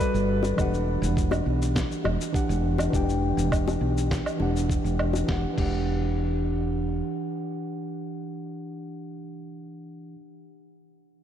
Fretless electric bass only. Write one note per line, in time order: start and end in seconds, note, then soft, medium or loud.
0.14 0.52 G1 medium
0.58 0.96 E1 medium
1.02 1.40 E1 loud
1.46 1.84 B1 medium
2.05 2.16 E1 medium
2.49 2.87 E1 medium
2.93 3.31 E1 medium
3.37 3.75 E1 medium
3.81 4.19 B1 medium
4.40 4.78 E1 medium
4.84 5.22 E1 medium
5.28 5.45 E1 medium
5.58 7.01 E1 medium